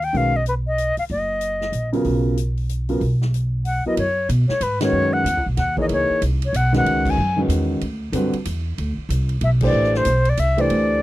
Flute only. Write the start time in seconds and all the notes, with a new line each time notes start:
0.04 G5
0.17 F5
0.36 D#5
0.48 B4
0.67 D#5
0.99 F5
1.11 D#5
3.66 F#5
3.87 D#5
3.99 C#5
4.48 C#5
4.63 B4
4.83 C#5
5.13 F#5
5.57 F#5
5.81 D#5
5.93 C#5
6.46 C#5
6.56 F#5
6.77 F#5
7.10 G#5
9.44 E5
9.65 D5
9.97 C5
10.29 D5
10.40 E5
10.61 D5